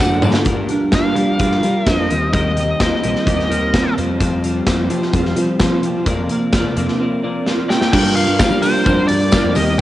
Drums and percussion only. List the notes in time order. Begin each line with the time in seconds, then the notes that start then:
0.22 mid tom, tambourine
0.34 snare
0.45 kick, closed hi-hat
0.69 closed hi-hat
0.92 kick, snare, closed hi-hat
1.16 closed hi-hat
1.39 kick, closed hi-hat
1.51 snare
1.63 closed hi-hat
1.86 kick, snare, closed hi-hat
2.10 closed hi-hat
2.33 kick, closed hi-hat
2.57 closed hi-hat
2.80 kick, snare, closed hi-hat
3.04 closed hi-hat
3.15 snare
3.27 kick, closed hi-hat
3.39 snare
3.52 closed hi-hat
3.74 kick, snare, closed hi-hat
3.98 closed hi-hat
4.21 kick, closed hi-hat
4.44 closed hi-hat
4.67 kick, snare, closed hi-hat
4.90 closed hi-hat
5.02 snare
5.13 kick, closed hi-hat
5.25 snare
5.36 closed hi-hat
5.60 kick, snare, closed hi-hat
5.83 closed hi-hat
6.06 kick, closed hi-hat
6.29 closed hi-hat
6.53 kick, snare, closed hi-hat
6.77 closed hi-hat
6.88 snare
7.46 snare
7.70 snare
7.81 snare
7.93 kick, crash
8.17 open hi-hat, tambourine
8.39 kick, snare, tambourine
8.63 open hi-hat, tambourine
8.86 kick, tambourine
9.09 open hi-hat
9.32 kick, snare, tambourine
9.55 open hi-hat, tambourine